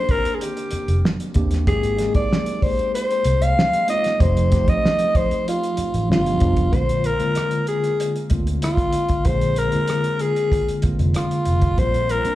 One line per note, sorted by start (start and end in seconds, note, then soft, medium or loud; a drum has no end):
0.00 1.34 D#3 medium
0.00 1.35 A#3 medium
0.00 1.36 C4 medium
0.00 1.36 D4 medium
0.00 1.37 G4 medium
0.00 0.12 C5 loud
0.09 0.37 A#4 loud
0.09 kick medium
0.09 closed hi-hat medium
0.25 closed hi-hat soft
0.35 0.44 G#4 medium
0.41 1.05 G4 medium
0.41 closed hi-hat medium
0.57 closed hi-hat soft
0.71 muted fingered electric bass stroke soft
0.71 closed hi-hat medium
0.88 1.02 F1 medium
0.88 closed hi-hat soft
1.05 snare loud
1.20 closed hi-hat medium
1.34 1.69 D#2 medium
1.34 1.57 D#3 medium
1.34 1.57 A#3 medium
1.34 1.57 C4 medium
1.34 1.58 D4 medium
1.34 1.58 G4 medium
1.34 kick medium
1.34 closed hi-hat medium
1.51 snare soft
1.51 closed hi-hat medium
1.66 2.08 G#1 loud
1.66 1.88 G#3 medium
1.66 1.89 A#3 medium
1.66 1.89 C4 medium
1.66 1.89 D#4 medium
1.66 1.90 G4 medium
1.66 2.12 G#4 loud
1.66 kick loud
1.66 closed hi-hat medium
1.83 closed hi-hat medium
1.97 2.85 G#3 medium
1.97 2.86 A#3 medium
1.97 2.86 C4 medium
1.97 2.86 D#4 medium
1.97 2.86 G#4 medium
1.97 snare soft
1.97 closed hi-hat medium
2.14 2.64 D5 medium
2.14 kick medium
2.14 closed hi-hat soft
2.33 snare loud
2.46 closed hi-hat medium
2.62 2.94 C5 medium
2.62 kick medium
2.62 open hi-hat soft
2.79 closed hi-hat soft
2.95 3.44 C5 loud
2.95 closed hi-hat medium
3.11 closed hi-hat soft
3.24 3.52 C2 medium
3.24 closed hi-hat medium
3.42 3.89 F5 loud
3.42 closed hi-hat medium
3.59 snare loud
3.73 closed hi-hat medium
3.87 4.10 G#3 medium
3.87 4.10 A#3 medium
3.87 4.10 C4 medium
3.87 4.11 D#4 medium
3.87 4.11 F4 medium
3.87 4.22 D#5 loud
3.87 closed hi-hat medium
4.04 snare soft
4.04 closed hi-hat medium
4.19 4.61 F1 loud
4.19 4.41 F3 medium
4.19 4.42 A3 medium
4.19 4.42 C4 medium
4.19 4.42 D#4 medium
4.19 4.43 G4 medium
4.19 4.71 C5 medium
4.19 kick loud
4.19 closed hi-hat medium
4.37 closed hi-hat medium
4.50 5.38 F3 medium
4.50 5.39 A3 medium
4.50 5.39 C4 medium
4.50 5.39 D#4 medium
4.50 5.39 G4 medium
4.50 kick medium
4.50 snare soft
4.50 closed hi-hat medium
4.68 5.18 D#5 loud
4.68 muted fingered electric bass stroke soft
4.68 kick medium
4.68 closed hi-hat medium
4.85 snare loud
4.99 closed hi-hat medium
5.15 5.47 C5 loud
5.15 kick medium
5.15 closed hi-hat medium
5.31 closed hi-hat soft
5.48 6.07 F4 medium
5.48 closed hi-hat medium
5.63 closed hi-hat soft
5.77 muted fingered electric bass stroke soft
5.77 closed hi-hat medium
5.94 6.11 A1 medium
5.94 closed hi-hat soft
6.08 6.37 G1 medium
6.08 6.34 F3 medium
6.08 6.35 G3 medium
6.08 6.35 B3 medium
6.08 6.35 D4 medium
6.08 6.76 F4 medium
6.08 6.36 G4 medium
6.08 snare loud
6.26 closed hi-hat medium
6.40 6.68 F1 medium
6.40 6.62 F3 medium
6.40 6.63 G3 medium
6.40 6.63 B3 medium
6.40 6.63 D4 medium
6.40 6.64 F4 medium
6.40 kick medium
6.40 closed hi-hat medium
6.57 kick medium
6.57 closed hi-hat medium
6.71 7.13 A#1 medium
6.71 7.05 D3 medium
6.71 7.05 G#3 medium
6.71 7.05 A#3 medium
6.71 7.06 C4 medium
6.71 7.06 F4 medium
6.71 7.07 C5 loud
6.71 kick loud
6.71 closed hi-hat medium
6.89 closed hi-hat soft
7.04 7.68 A#4 medium
7.04 closed hi-hat medium
7.19 7.96 D3 medium
7.19 7.96 G#3 medium
7.19 7.96 A#3 medium
7.19 7.97 C4 medium
7.19 7.97 F4 medium
7.19 muted fingered electric bass stroke soft
7.19 closed hi-hat soft
7.35 cross-stick medium
7.35 closed hi-hat medium
7.51 closed hi-hat soft
7.67 8.27 G#4 medium
7.67 closed hi-hat medium
7.84 closed hi-hat soft
8.00 closed hi-hat medium
8.16 closed hi-hat soft
8.29 8.58 D2 medium
8.29 8.95 D3 medium
8.29 8.96 G#3 medium
8.29 8.96 A#3 medium
8.29 8.97 C4 medium
8.29 8.97 F4 medium
8.29 kick medium
8.29 closed hi-hat medium
8.47 closed hi-hat medium
8.62 9.28 F4 medium
8.62 cross-stick loud
8.62 closed hi-hat medium
8.77 kick medium
8.77 closed hi-hat soft
8.93 closed hi-hat medium
9.09 kick medium
9.09 cross-stick soft
9.09 closed hi-hat medium
9.25 9.66 A#1 loud
9.25 9.58 D3 medium
9.25 9.58 G#3 medium
9.25 9.58 A#3 medium
9.25 9.59 C4 medium
9.25 9.59 G#4 medium
9.25 9.60 C5 medium
9.25 kick loud
9.25 closed hi-hat medium
9.41 closed hi-hat soft
9.56 10.23 A#4 loud
9.56 closed hi-hat medium
9.72 10.48 D3 medium
9.72 10.49 G#3 medium
9.72 10.49 A#3 medium
9.72 10.49 C4 medium
9.72 10.50 F4 medium
9.72 muted fingered electric bass stroke soft
9.72 closed hi-hat soft
9.88 cross-stick medium
9.88 closed hi-hat medium
10.04 closed hi-hat soft
10.19 10.84 G#4 medium
10.19 closed hi-hat medium
10.36 closed hi-hat soft
10.52 kick medium
10.52 closed hi-hat medium
10.68 closed hi-hat soft
10.82 11.48 D3 medium
10.82 11.48 G#3 medium
10.82 11.49 A#3 medium
10.82 11.49 C4 medium
10.82 11.49 F4 medium
10.82 muted fingered electric bass stroke soft
10.82 kick medium
10.82 closed hi-hat medium
10.99 11.12 F1 medium
10.99 closed hi-hat soft
11.14 11.80 F4 medium
11.14 cross-stick loud
11.14 closed hi-hat medium
11.31 closed hi-hat soft
11.45 11.73 F1 medium
11.45 closed hi-hat medium
11.62 kick medium
11.62 closed hi-hat medium
11.76 12.18 A#1 medium
11.76 12.10 D#3 medium
11.76 12.10 G3 medium
11.76 12.10 A#3 medium
11.76 12.11 C4 medium
11.76 12.11 F4 medium
11.76 12.12 C5 loud
11.76 kick loud
11.76 closed hi-hat medium
11.94 closed hi-hat soft
12.09 12.35 A#4 loud
12.09 closed hi-hat medium
12.24 12.35 D#3 medium
12.24 12.35 G3 medium
12.24 12.35 A#3 medium
12.24 12.35 C4 medium
12.24 12.35 D4 medium
12.24 muted fingered electric bass stroke soft
12.24 closed hi-hat soft